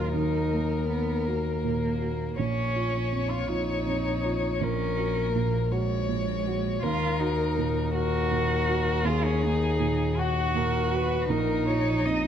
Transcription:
Already playing: D#2 A#2 F#3 F4 F#4 A#4
0.14 D#2 D#4
0.53 A#3
0.89 B3
1.25 A#3 F#4
1.64 A#2
2.01 F#4
2.37 A#1 C#4 C#5
2.76 F4
3.12 F2
3.30 F4
3.48 D#4 F4
3.86 F2
4.25 F4
4.60 A#1 C#4 A#4
4.97 F#4
5.33 A#2 A#3
5.71 G#3 F#4 C#5
6.09 A#2
6.47 F#4
6.83 D#2 F4 A#4
7.19 D#4 F#4
7.58 A#2
7.94 F#4 A#4
8.31 A#2
8.69 F#4
9.05 D#2 F4 G#4
9.25 C#4
9.42 A#3 D#4
9.80 A#2
10.17 F#4
10.55 A#2 A#4
10.91 F#4 B4
11.29 A#1 D#4 A#4
11.68 F4 C#5
12.05 F2 D#5

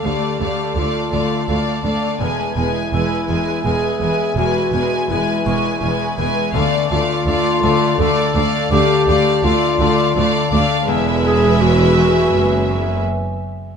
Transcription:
Already playing: A3 D4 A4 D5 A5 C#6
0.03 D2 D3 A3 G4 D5 F5
0.40 D2 D3 A3 D5 F5
0.76 D2 A3 D4 F4 D5 F5
1.11 D2 D3 A3 D5 F5
1.47 D2 D3 A3 D5 F5
1.83 D2 A3 D4 D5 F5
2.19 E1 E2 G#3 B4 E5 G#5
2.56 E1 E2 G#3 E4 B4 G#5
2.92 E1 E2 E3 G#3 B4 G#5 E6
3.28 E1 E2 G#3 B4 G#5
3.64 E1 E2 G#3 G#4 B4 G#5
4.00 E1 E2 E3 G#3 B4 G#5
4.36 E1 E2 G#3 F#4 B4 G#5
4.72 E1 E2 G#3 B4 G#5
5.09 E1 E2 E3 G#3 E4 B4 G#5
5.46 E1 E2 G#3 B4 G#5 C#6
5.82 E1 E2 G#3 B4 G#5
6.18 E1 E2 E3 G#3 B4 G#5
6.54 D2 D3 A3 A4 D5 F5 A5
6.90 D2 D3 A3 F4 D5 F5
7.26 D2 A3 D4 D5 F5
7.62 D2 D3 A3 A4 D5 F5 A5
7.98 D2 D3 A3 A4 D5 F5
8.35 D2 A3 D4 D5 F5
8.71 D2 D3 A3 G4 D5 F5 D6
9.07 D2 D3 A3 D5 F5
9.43 D2 A3 D4 F4 D5 F5
9.79 D2 D3 A3 D5 F5
10.15 D2 D3 A3 D5 F5
10.51 D2 A3 D4 D5 F5
10.87 E1 E2 G#3 B4 E5 G#5
10.91 E5
11.24 E2 G#4
11.61 E3 F#4
11.97 E2 C#6
12.33 F#1 E2 F#2
12.69 E3
13.05 reverse cymbal

